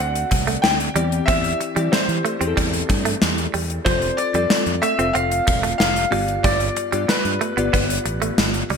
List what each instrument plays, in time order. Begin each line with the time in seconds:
Already playing: synth keys D3 C4 F#4 A4 D5, grand piano F#5
0.00 fingered electric bass D2
0.15 closed hi-hat
0.31 fingered electric bass C2, muted clean electric guitar stroke, kick, closed hi-hat
0.47 clean electric guitar A3, closed hi-hat
0.62 fingered electric bass D2, grand piano G5, snare
0.80 closed hi-hat
0.95 fingered electric bass E2, synth keys E3 C4 E4 G4 D5, clean electric guitar G3, closed hi-hat
1.12 closed hi-hat
1.26 fingered electric bass E2, clean electric guitar C4, grand piano E5, kick, closed hi-hat
1.44 closed hi-hat
1.60 muted clean electric guitar stroke, closed hi-hat
1.75 fingered electric bass E3, clean electric guitar G3, synth keys C4 E4 G4 D5, closed hi-hat
1.92 grand piano C5, muted clean electric guitar stroke, muted fingered electric bass stroke, snare
2.08 fingered electric bass E3, closed hi-hat
2.25 clean electric guitar A3, closed hi-hat
2.40 fingered electric bass E2, synth keys C4 E4 G4 G#4, clean electric guitar C4, closed hi-hat
2.47 synth keys A4
2.57 fingered electric bass E2, clean electric guitar G3, kick, closed hi-hat
2.73 closed hi-hat
2.89 fingered electric bass G2, muted clean electric guitar stroke, kick, closed hi-hat
3.05 clean electric guitar A3, closed hi-hat
3.22 fingered electric bass E2, snare
3.38 closed hi-hat
3.54 fingered electric bass E2, clean electric guitar G3, open hi-hat
3.70 closed hi-hat
3.85 fingered electric bass F1, clean electric guitar F3, synth keys C4 F4 A4 D5, grand piano C5, kick, closed hi-hat
4.02 closed hi-hat
4.17 grand piano D5, muted clean electric guitar stroke, closed hi-hat
4.34 fingered electric bass F2, clean electric guitar G3, synth keys C4 F4 A4 D5, closed hi-hat
4.50 muted fingered electric bass stroke, muted clean electric guitar stroke, snare
4.66 fingered electric bass F2, closed hi-hat
4.82 clean electric guitar A3, grand piano E5, closed hi-hat
4.98 fingered electric bass F1, synth keys C4 F4 A4 F5, clean electric guitar C4, closed hi-hat
5.13 fingered electric bass F1, clean electric guitar C4, grand piano F5, closed hi-hat
5.32 closed hi-hat
5.47 fingered electric bass E1, muted clean electric guitar stroke, kick, closed hi-hat
5.63 clean electric guitar A3, closed hi-hat
5.78 fingered electric bass F1, grand piano F5, snare
5.96 closed hi-hat
6.11 fingered electric bass G1, synth keys G2 B3 F4 G4 D5, clean electric guitar G3, open hi-hat
6.28 closed hi-hat
6.43 fingered electric bass G1, clean electric guitar G3, grand piano D5, kick, closed hi-hat
6.60 closed hi-hat
6.76 muted clean electric guitar stroke, closed hi-hat
6.92 fingered electric bass G2, clean electric guitar G3, synth keys B3 F4 G4 D5, closed hi-hat
7.08 grand piano B4, muted clean electric guitar stroke, muted fingered electric bass stroke, snare
7.25 fingered electric bass G2, closed hi-hat
7.41 clean electric guitar A3, closed hi-hat
7.57 fingered electric bass G1, clean electric guitar B3, synth keys B3 F4 G4 D5, closed hi-hat
7.73 fingered electric bass G1, clean electric guitar B3, kick, closed hi-hat
7.90 closed hi-hat
8.05 fingered electric bass A1, muted clean electric guitar stroke, closed hi-hat
8.22 clean electric guitar A3, closed hi-hat
8.38 fingered electric bass G1, snare
8.54 closed hi-hat
8.70 fingered electric bass C#2, clean electric guitar G3, open hi-hat